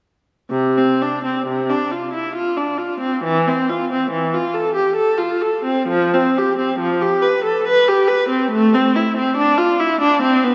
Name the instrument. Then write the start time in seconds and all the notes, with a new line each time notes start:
viola
0.51 C3
0.78 C4
1.02 D4
1.25 C4
1.47 C3
1.70 D4
1.92 F4
2.14 E4
2.35 F4
2.57 D4
2.78 F4
3.00 C4
3.24 E3
3.48 C4
3.69 F4
3.92 C4
4.11 E3
4.34 F4
4.54 A4
4.75 G4
4.96 A4
5.18 F4
5.41 A4
5.64 C4
5.88 F3
6.14 C4
6.38 G4
6.58 C4
6.79 F3
7.02 G4
7.22 B4
7.44 A4
7.68 B4
7.88 G4
8.08 B4
8.29 C4
8.51 A3
8.74 C4
8.96 E4
9.17 C4
9.37 D4
9.58 F4
9.80 E4
10.01 D4
10.22 C4
10.44 B3